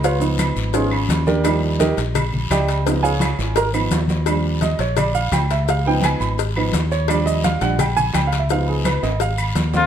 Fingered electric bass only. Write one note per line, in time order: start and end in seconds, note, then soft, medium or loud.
0.00 0.51 C#2 loud
0.56 1.06 G#1 loud
1.09 1.92 D#2 loud
1.98 2.47 A#1 loud
2.50 3.33 C#2 loud
3.39 3.88 G#1 medium
3.91 4.74 D#2 loud
4.79 5.29 A#1 medium
5.32 6.14 C#2 loud
6.20 6.70 G#1 medium
6.74 7.56 D#2 loud
7.62 8.11 A#1 medium
8.15 8.97 C#2 loud
9.03 9.52 G#1 medium
9.55 9.87 D#2 loud